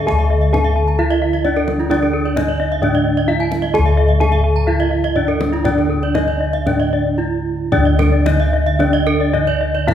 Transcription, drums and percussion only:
0.08 kendang low
0.20 kendang slap
0.43 kendang slap
0.54 kendang high, kendang low
0.66 kendang slap
0.88 kendang slap
1.12 kendang slap
1.34 kendang slap
1.45 kendang low
1.68 kendang high
1.80 kendang slap
1.91 kendang high, kendang low
2.03 kendang slap
2.26 kendang slap
2.37 kendang high, kendang low
2.71 kendang slap
2.83 kendang high
2.94 kendang slap
3.17 kendang slap
3.29 kendang low
3.52 kendang high
3.63 kendang slap
3.75 kendang low
3.86 kendang slap
4.09 kendang slap
4.21 kendang high, kendang low
4.33 kendang slap
4.57 kendang slap
4.80 kendang slap
5.04 kendang slap
5.16 kendang low
5.41 kendang high
5.53 kendang slap
5.65 kendang high, kendang low
5.78 kendang slap
6.02 kendang slap
6.15 kendang high, kendang low
6.28 kendang slap
6.54 kendang slap
6.67 kendang high
6.80 kendang slap
7.72 kendang low
7.99 kendang slap, kendang high, kendang low
8.26 kendang high
8.53 kendang slap
8.67 kendang slap
8.80 kendang slap, kendang high
8.94 kendang slap
9.34 kendang slap, kendang low
9.75 kendang slap
9.88 kendang high, kendang low

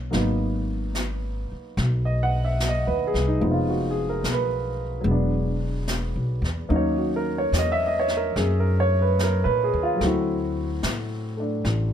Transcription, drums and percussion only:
0.13 brush sweep, snare
0.95 snare, hi-hat pedal
1.77 brush sweep, snare
2.60 snare, hi-hat pedal
3.15 snare
3.42 brush sweep
4.24 snare, hi-hat pedal
5.06 brush sweep
5.88 snare, hi-hat pedal
6.44 snare
6.71 brush sweep
7.53 snare, hi-hat pedal
8.08 snare
8.36 brush sweep, snare
9.19 snare, hi-hat pedal
10.01 brush sweep, snare
10.83 snare, hi-hat pedal
11.65 brush sweep, snare

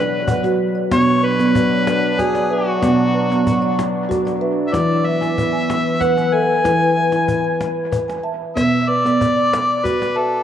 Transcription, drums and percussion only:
0.28 cajon bass
0.44 cajon slap
0.92 cajon bass, cajon slap
1.24 cajon slap
1.39 cajon slap
1.55 cajon bass
1.87 cajon slap
2.19 cajon bass, cajon slap
2.35 cajon slap
2.83 cajon bass, cajon slap
3.32 cajon slap
3.47 cajon bass
3.79 cajon slap
4.11 cajon bass, cajon slap
4.27 cajon slap
4.74 cajon bass, cajon slap
5.06 cajon slap
5.22 cajon slap
5.38 cajon bass
5.70 cajon slap
6.01 cajon bass, cajon slap
6.18 cajon slap
6.65 cajon bass, cajon slap
6.81 cajon slap
7.12 cajon slap
7.28 cajon bass
7.45 cajon slap
7.61 cajon slap
7.77 cajon slap
7.92 cajon bass
8.09 cajon slap
8.42 cajon slap
8.57 cajon bass, cajon slap
8.89 cajon slap
9.06 cajon slap
9.21 cajon bass
9.53 cajon slap
9.85 cajon bass, cajon slap
10.02 cajon slap

